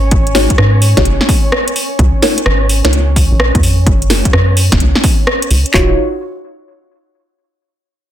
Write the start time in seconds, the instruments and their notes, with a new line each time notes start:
Already playing: analog synth bass G#1, violin section C#4 C#5
0.11 kick, closed hi-hat
0.27 closed hi-hat
0.35 synth stab D#4 F#4 G#4 C#5, snare, open hi-hat
0.50 kick, closed hi-hat
0.58 analog synth bass G#2, cross-stick
0.82 open hi-hat
0.97 analog synth bass G#1, synth stab D#4 F#4 G#4 C#5, kick, snare, closed hi-hat
1.05 analog synth bass F#1, closed hi-hat
1.21 snare
1.29 kick, open hi-hat
1.52 cross-stick
1.68 closed hi-hat
1.76 open hi-hat
1.99 analog synth bass C#2, kick, closed hi-hat
2.22 synth stab D#4 F4 A#4 C#5, snare, open hi-hat
2.38 closed hi-hat
2.46 analog synth bass G#1, cross-stick
2.69 open hi-hat
2.85 analog synth bass C#2, synth stab D#4 F4 A#4 C#5, snare, closed hi-hat
2.93 closed hi-hat
3.16 kick, open hi-hat
3.32 analog synth bass A#1
3.40 cross-stick
3.55 analog synth bass F2, kick, closed hi-hat
3.63 open hi-hat
3.87 analog synth bass F#1, kick, closed hi-hat
4.02 closed hi-hat
4.10 synth stab F4 F#4 G#4 A#4, snare, open hi-hat
4.25 kick, closed hi-hat
4.33 analog synth bass F#2, cross-stick
4.57 open hi-hat
4.72 analog synth bass F#1, kick, snare, closed hi-hat
4.80 analog synth bass C#2, closed hi-hat
4.95 snare
5.04 kick, open hi-hat
5.27 cross-stick
5.42 closed hi-hat
5.51 analog synth bass C#2, open hi-hat
5.66 closed hi-hat
5.74 analog synth bass D#1, synth stab D#4 F4 F#4 C#5, kick, clap